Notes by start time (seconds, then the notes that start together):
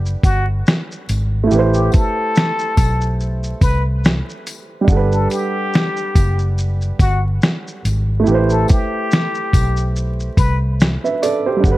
Already playing: F#1 G3 D4 A4 B4 F#5
0.06 shaker
0.23 G1 F#4, kick, closed hi-hat, tambourine, shaker
0.67 snare, shaker
0.91 shaker
1.09 G#1, closed hi-hat, tambourine, shaker
1.44 A3 E4
1.51 A1 G4 B4, shaker
1.59 C5
1.74 G4, shaker
1.92 A4, kick, closed hi-hat, tambourine, shaker
2.36 snare, shaker
2.59 shaker
2.77 B1, kick, closed hi-hat, tambourine, shaker
3.01 shaker
3.20 shaker
3.44 shaker
3.61 C2 B4, kick, closed hi-hat, tambourine, shaker
4.04 snare, shaker
4.29 shaker
4.47 closed hi-hat, tambourine, shaker
4.81 G3 D4
4.88 G1 F#5, kick, shaker
4.92 A4 B4
5.12 A4, shaker
5.30 G4, closed hi-hat, tambourine, shaker
5.73 snare, shaker
5.97 shaker
6.15 F#1, kick, closed hi-hat, tambourine, shaker
6.39 shaker
6.58 shaker
6.81 shaker
6.99 G1 F#4, kick, closed hi-hat, tambourine, shaker
7.42 snare, shaker
7.68 shaker
7.85 G#1, closed hi-hat, tambourine, shaker
8.20 A3 E4
8.26 A1 G4, shaker
8.31 B4 C5
8.50 A4, shaker
8.68 G4, kick, closed hi-hat, tambourine, shaker
9.11 snare, shaker
9.35 shaker
9.53 B1, kick, closed hi-hat, tambourine, shaker
9.77 shaker
9.96 shaker
10.20 shaker
10.37 C2 B4, kick, closed hi-hat, tambourine, shaker
10.80 snare, shaker
11.04 B4 E5, shaker
11.22 A4 D5, closed hi-hat, tambourine, shaker
11.46 G4 C5
11.56 G3 D4
11.64 G1 A4 F#5, kick, shaker
11.72 B4